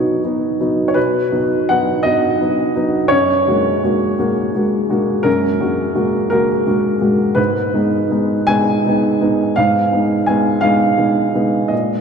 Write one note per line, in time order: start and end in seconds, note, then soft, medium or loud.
0.00 0.96 B2 soft
0.00 0.24 F#3 soft
0.00 0.25 B3 soft
0.00 0.25 D#4 soft
0.00 0.86 C#5 medium
0.24 0.56 F#3 soft
0.24 0.57 B3 soft
0.24 0.57 D#4 soft
0.60 0.92 F#3 soft
0.60 0.93 B3 soft
0.60 0.93 D#4 soft
0.88 0.96 C#5 medium
0.94 1.31 B2 soft
0.94 1.68 B4 medium
1.32 1.65 F#3 soft
1.32 1.65 B3 soft
1.32 1.65 D#4 soft
1.69 2.02 F#3 soft
1.69 2.02 B3 soft
1.69 2.03 D#4 soft
1.69 2.05 F#5 medium
2.03 2.37 F#3 soft
2.03 2.37 B3 soft
2.03 2.38 D#4 soft
2.03 3.11 D#5 medium
2.41 2.73 F#3 soft
2.41 2.73 B3 soft
2.41 2.73 D#4 soft
2.75 3.08 F#3 soft
2.75 3.08 B3 soft
2.75 3.09 D#4 soft
3.08 3.46 F#2 medium
3.08 5.24 C#5 medium
3.47 3.80 G#3 soft
3.47 3.80 A#3 soft
3.47 3.80 F#4 soft
3.83 4.16 G#3 soft
3.83 4.16 A#3 soft
3.83 4.16 F#4 soft
4.18 4.51 G#3 soft
4.18 4.51 A#3 soft
4.18 4.52 F#4 soft
4.55 4.87 G#3 soft
4.55 4.87 A#3 soft
4.55 4.87 F#4 soft
4.89 5.22 G#3 soft
4.89 5.23 A#3 soft
4.89 5.22 F#4 soft
5.23 5.60 F#2 medium
5.23 6.28 A#4 medium
5.60 5.92 G#3 soft
5.60 5.93 A#3 soft
5.60 5.93 F#4 soft
5.95 6.28 G#3 soft
5.95 6.28 A#3 soft
5.95 6.28 F#4 soft
6.30 6.64 G#3 soft
6.30 6.64 A#3 soft
6.30 6.64 F#4 soft
6.30 6.66 A#4 medium
6.67 6.99 G#3 soft
6.67 6.99 A#3 soft
6.67 6.99 F#4 soft
7.01 7.33 G#3 soft
7.01 7.33 A#3 soft
7.01 7.34 F#4 soft
7.35 7.72 G#2 medium
7.35 8.48 B4 medium
7.74 8.08 G#3 soft
7.74 8.08 B3 soft
7.74 8.08 D#4 soft
8.11 8.45 G#3 soft
8.11 8.45 B3 soft
8.11 8.45 D#4 soft
8.47 8.82 G#3 soft
8.47 8.82 B3 soft
8.47 8.82 D#4 soft
8.47 9.56 G#5 loud
8.86 9.18 G#3 soft
8.86 9.19 B3 soft
8.86 9.19 D#4 soft
9.21 9.53 G#3 soft
9.21 9.53 B3 soft
9.21 9.54 D#4 soft
9.56 9.92 G#2 medium
9.56 10.28 F5 medium
9.92 10.25 G#3 soft
9.92 10.24 B3 soft
9.92 10.24 D#4 soft
10.26 10.60 G#3 soft
10.26 10.61 B3 soft
10.26 10.61 D#4 soft
10.26 10.63 G#5 medium
10.61 10.95 G#3 soft
10.61 10.95 B3 soft
10.61 10.95 D#4 soft
10.61 11.70 F5 medium
10.97 11.31 G#3 soft
10.97 11.31 B3 soft
10.97 11.31 D#4 soft
11.34 11.67 G#3 soft
11.34 11.68 B3 soft
11.34 11.68 D#4 soft
11.68 12.01 A#2 soft
11.68 12.01 D#5 medium